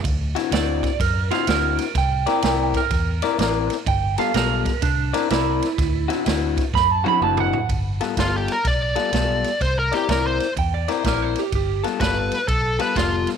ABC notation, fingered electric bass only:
X:1
M:4/4
L:1/8
Q:"Swing" 1/4=125
K:C
V:1 name="Fingered electric bass" clef=bass
D,,2 D,,2 ^F,,2 D,,2 | C,,2 C,,2 E,,2 A,,,2 | G,,,2 B,,,2 C,,2 C,,2 | D,,2 D,,2 ^F,,2 ^F,,,2 |
G,,,2 G,,,2 B,,,2 B,,,2 | C,,2 C,,2 E,,2 _B,,,2 | G,,,2 G,,,2 B,,,2 F,,,2 |]